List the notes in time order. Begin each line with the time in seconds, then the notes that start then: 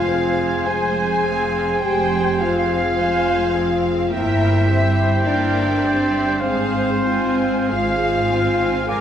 Already playing: F1 F2 F4 C5 F5 G#5
0.09 C4 G#4 C5 F5
0.64 F1 F2 G#3 G#4 C5 G#5
0.68 G#4
1.23 C4 G#4 C5 F5
1.80 F1 F2 G#3 G4 G#4 C5 G5 G#5
2.38 C4 F4 G#4 C5 F5
2.98 F1 F2 G#3 G#4 C5 G#5
3.54 C4 G#4 C5 F5
4.11 G1 G2 A#3 E4 A#4 C5 E5 G5
4.68 C4 G4 C5 E5
5.24 G1 G2 A#3 D4 A#4 D5 E5 G5
5.82 C4 G4 C5 E5
6.40 G#1 G#2 G#3 C4 G#4 C5 F5
7.05 C4 F4 C5 G#5
7.70 G#1 G#2 G#3 F4 G#4 F5
8.31 C4 F4 C5 G#5
8.88 F1 F2 G#3 G#4 A#4 D5 F5 G#5